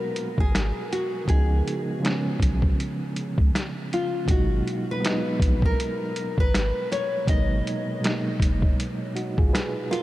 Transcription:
Already playing: reed electric piano B2 F#3 G#3 A#3 B3 D#4 F#4, nylon-string guitar A#4
0.16 closed hi-hat
0.38 sub bass G#1, nylon-string guitar G#4, kick
0.55 finger snap, snare, closed hi-hat
0.92 nylon-string guitar F#4, closed hi-hat
1.25 sub bass C#2, reed electric piano C#3 F3 G#3, kick, closed hi-hat
1.29 reed electric piano B3 D#4, nylon-string guitar G#4
1.68 closed hi-hat
1.99 reed electric piano C#3 F3 G#3
2.04 reed electric piano B3 C#4, finger snap, snare, closed hi-hat
2.40 sub bass B1, kick, closed hi-hat
2.62 kick
2.80 closed hi-hat
3.16 closed hi-hat
3.38 sub bass C#2, kick
3.55 finger snap, snare, closed hi-hat
3.93 nylon-string guitar F4, closed hi-hat
4.25 sub bass G#1, reed electric piano B2 F#3 G#3, kick, closed hi-hat
4.29 reed electric piano A#3 D#4, nylon-string guitar F#4
4.68 closed hi-hat
4.91 nylon-string guitar B4
5.00 reed electric piano F#3 G#3 B3
5.05 reed electric piano D#4, finger snap, snare, closed hi-hat
5.40 sub bass A#1, kick, closed hi-hat
5.62 nylon-string guitar A#4, kick
5.80 closed hi-hat
6.16 closed hi-hat
6.38 sub bass G#1, nylon-string guitar B4, kick
6.54 finger snap, snare, closed hi-hat
6.92 nylon-string guitar C#5, closed hi-hat
7.25 sub bass G#1, reed electric piano B2 F#3 G#3, kick, closed hi-hat
7.29 reed electric piano A#3 D#4, nylon-string guitar D#5
7.67 closed hi-hat
8.00 reed electric piano B2 F#3 G#3
8.04 reed electric piano A#3 D#4, finger snap, snare, closed hi-hat
8.40 sub bass F#1, kick, closed hi-hat
8.62 kick
8.80 closed hi-hat
9.16 reed electric piano D#4 F#4, closed hi-hat
9.38 sub bass G#1, reed electric piano F4 G#4, kick
9.53 reed electric piano G#4 B4, finger snap, snare, closed hi-hat
9.91 nylon-string guitar F4, reed electric piano F#4 A#4, closed hi-hat

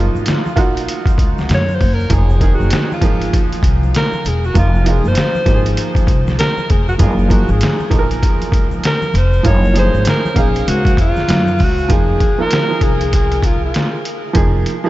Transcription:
Already playing: upright bass F#1, upright piano F3 A#3 D#4 F4
0.15 upright bass G#1, high conga, shaker
0.26 snare, closed hi-hat, shaker
0.46 high conga, shaker
0.56 upright bass A#1, upright piano A#3 D#4 F4 F#4, kick, closed hi-hat, low conga, shaker
0.77 closed hi-hat, shaker
0.88 closed hi-hat, shaker
1.06 kick, closed hi-hat, high conga, shaker
1.18 upright bass C#2, kick, closed hi-hat, shaker
1.38 snare, high conga, shaker
1.49 upright bass F#2, snare, closed hi-hat, shaker
1.54 alto saxophone C#5
1.69 high conga, shaker
1.75 alto saxophone C5
1.81 upright bass F#1, kick, open hi-hat, low conga, shaker
1.94 alto saxophone A#4
2.00 shaker
2.09 upright bass F1, upright piano F3 A#3 D#4 G#4, kick, closed hi-hat, shaker
2.15 alto saxophone G#4
2.30 shaker
2.41 upright piano D#3 A#3 D#4 G#4, kick, closed hi-hat, low conga, shaker
2.55 alto saxophone F#4
2.60 upright bass F#1, high conga, shaker
2.70 snare, closed hi-hat, shaker
2.92 alto saxophone F4, high conga, shaker
3.01 upright bass G#1, upright piano F3 A#3 D#4 G#4, kick, closed hi-hat, low conga, shaker
3.22 closed hi-hat, shaker
3.33 kick, closed hi-hat, shaker
3.52 closed hi-hat, high conga, shaker
3.63 upright bass C2, kick, closed hi-hat, shaker
3.83 high conga, shaker
3.94 alto saxophone A#4, snare, closed hi-hat, shaker
4.13 high conga, shaker
4.25 upright bass E1, alto saxophone G#4, closed hi-hat, low conga, shaker
4.44 alto saxophone F#4, shaker
4.54 upright bass F1, upright piano F3 A#3 D#4 F4, kick, closed hi-hat, shaker
4.59 alto saxophone F4
4.75 shaker
4.84 upright piano F3 A#3 D#4 F4, closed hi-hat, low conga, shaker
4.89 alto saxophone G#4
5.05 upright bass F#1, alto saxophone C5, high conga, shaker
5.15 snare, closed hi-hat, shaker
5.35 high conga, shaker
5.45 upright bass G#1, upright piano F3 A#3 D#4 G4, kick, closed hi-hat, low conga, shaker
5.54 upright piano G#4
5.65 closed hi-hat, shaker
5.77 closed hi-hat, shaker
5.95 kick, closed hi-hat, high conga, shaker
6.07 upright bass C2, kick, closed hi-hat, shaker
6.27 snare, high conga, shaker
6.39 alto saxophone A#4, snare, closed hi-hat, shaker
6.57 high conga, shaker
6.70 upright bass F1, alto saxophone G#4, kick, closed hi-hat, low conga, shaker
6.88 alto saxophone F#4, shaker
6.98 upright bass F#1, upright piano F3 A#3 D#4 G#4, alto saxophone F4, kick, closed hi-hat, shaker
7.19 shaker
7.28 upright piano F3 A#3 D#4 G#4, alto saxophone F#4, kick, closed hi-hat, low conga, shaker
7.48 upright bass G#1, alto saxophone G#4, high conga, shaker
7.60 snare, closed hi-hat, shaker
7.80 high conga, shaker
7.90 upright bass A#1, upright piano F3 A#3 D#4 A4, kick, closed hi-hat, low conga, shaker
7.99 upright piano A#4
8.11 closed hi-hat, shaker
8.23 kick, closed hi-hat, shaker
8.41 closed hi-hat, high conga, shaker
8.52 upright bass C#2, kick, closed hi-hat, shaker
8.71 high conga, shaker
8.84 alto saxophone A#4, snare, closed hi-hat, shaker
9.02 high conga, shaker
9.14 upright bass F1, alto saxophone C5, closed hi-hat, low conga, shaker
9.33 shaker
9.43 upright bass F#1, upright piano F3 A#3 D#4 F4, kick, closed hi-hat, shaker
9.47 alto saxophone C#5
9.64 shaker
9.74 upright piano F3 A3 D#4 G#4, closed hi-hat, low conga, shaker
9.79 upright piano A#3, alto saxophone C5
9.94 upright bass G#1, high conga, shaker
10.05 snare, closed hi-hat, shaker
10.09 alto saxophone A#4
10.25 high conga, shaker
10.34 upright bass A#1, upright piano C#3 A#3 D#4 F5, kick, closed hi-hat, low conga, shaker
10.39 alto saxophone G#4
10.55 closed hi-hat, shaker
10.67 upright bass C#2, alto saxophone F#4, closed hi-hat, shaker
10.85 kick, closed hi-hat, high conga, shaker
10.97 upright bass F2, kick, closed hi-hat, shaker
11.01 alto saxophone F4
11.16 snare, high conga, shaker
11.28 upright bass F#2, snare, closed hi-hat, shaker
11.47 high conga, shaker
11.59 upright bass C#2, kick, open hi-hat, low conga, shaker
11.63 alto saxophone F#4
11.78 shaker
11.88 upright bass F1, upright piano F3 A#3 D#4 G#4, alto saxophone G#4, kick, closed hi-hat
12.20 kick, closed hi-hat
12.38 upright piano F3 A#3 D#4 F4, alto saxophone A#4
12.51 snare, closed hi-hat
12.68 upright piano F3 A#3 D#4 G#4
12.81 upright bass C2, alto saxophone G#4, kick, closed hi-hat
13.01 closed hi-hat
13.13 alto saxophone G#4, kick, closed hi-hat
13.32 closed hi-hat
13.43 alto saxophone F4, kick, closed hi-hat
13.65 alto saxophone F4
13.74 snare, closed hi-hat
14.05 closed hi-hat
14.33 upright bass F1, upright piano F3 A#3 D#4 G#4, kick, closed hi-hat
14.66 closed hi-hat
14.84 upright piano F3 A#3 D#4 G#4

